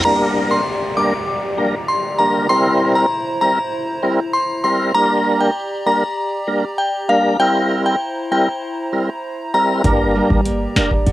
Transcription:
Already playing: nylon-string guitar G3 A#3 E4
0.05 tonewheel organ G3 A#3 D4 A#4, analog synth pad G4 D5 A#5, synth bell A#5, downlifter
0.51 synth bell C6
0.97 tonewheel organ G3 A#3 D4 A#4, synth bell D6
1.58 tonewheel organ G3 A#3 D4 A#4
1.88 synth bell C6
2.19 tonewheel organ G3 A#3 D4 A#4, synth bell A#5
2.49 tonewheel organ G3 C4 E4 A#4, analog synth pad E4 C5, synth bell C6
2.95 synth bell A#5
3.41 tonewheel organ G3 C4 E4 A#4, synth bell A#5
4.03 tonewheel organ G3 C4 E4 A#4
4.33 synth bell C6
4.64 tonewheel organ G3 C4 E4 A#4, synth bell C6
4.94 tonewheel organ G3 A#3 D4 A#4, analog synth pad G4 D5, synth bell A#5
5.40 synth bell G5
5.86 tonewheel organ G3 A#3 D4 A#4, synth bell A#5
6.47 tonewheel organ G3 A#3 D4 A#4
6.78 synth bell G5
7.09 tonewheel organ G3 A#3 D4 A#4, synth bell F5
7.39 tonewheel organ G3 C4 E4 A#4, analog synth pad E4 C5 A#5, synth bell G5
7.86 synth bell G5
8.31 tonewheel organ G3 C4 E4 A#4, synth bell G5
8.93 tonewheel organ G3 C4 E4 A#4
9.54 tonewheel organ G3 C4 E4 A#4, synth bell A#5
9.84 808-style bass G1, nylon-string guitar G2, tonewheel organ G3 A#3 D4 A#4, analog synth pad G4 D5, kick, closed hi-hat
10.15 nylon-string guitar G3
10.30 808-style bass G1, kick
10.46 nylon-string guitar A#3, closed hi-hat
10.76 808-style bass F1, tonewheel organ G3 A#3 D4 A#4, nylon-string guitar D4, snare
10.91 kick
11.07 808-style bass G1, nylon-string guitar D3, kick, closed hi-hat

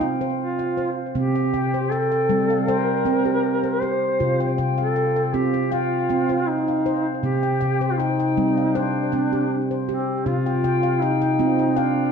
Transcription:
0.01 handpan C4 G5
0.21 handpan C5
0.39 duduk F4
0.59 handpan F5
0.77 handpan C5
1.15 handpan C3 C4, duduk G4
1.35 handpan G5
1.54 handpan C3 G5
1.74 handpan C5
1.90 duduk A4, handpan G5
2.12 handpan G5
2.29 handpan G3 C4
2.50 handpan F5
2.68 duduk A#4, handpan C5 G5
3.05 handpan C4 G5
3.25 handpan G4
3.64 handpan C5
3.81 handpan G4, duduk C5
4.20 handpan C3 F4
4.40 handpan G5
4.58 handpan C3 G5
4.78 duduk A4, handpan F5
4.96 handpan G5
5.16 handpan G5
5.26 duduk A4
5.33 handpan C4 F4, duduk G4
5.54 handpan G5
5.71 duduk F4, handpan F5 G5
6.09 handpan C4 G5
6.29 handpan C5
6.48 duduk D#4
6.68 handpan F5
6.86 handpan C5
7.23 handpan C3 C4, duduk G4
7.43 handpan G5
7.61 handpan C3 G5
7.81 handpan C5
7.91 duduk F4
7.98 duduk D#4, handpan G5
8.20 handpan G5
8.37 handpan G3 C4
8.57 handpan F5
8.75 duduk D4, handpan C5 G5
9.12 handpan C4 G5
9.33 handpan G4
9.71 handpan C5
9.89 duduk C4, handpan G4
10.26 handpan C3 F4, duduk F4
10.46 handpan G5
10.64 handpan C3 G5
10.83 handpan F5
11.02 duduk D#4, handpan G5
11.22 handpan G5
11.39 handpan C4 F4
11.59 handpan G5
11.76 duduk D4, handpan F5 G5

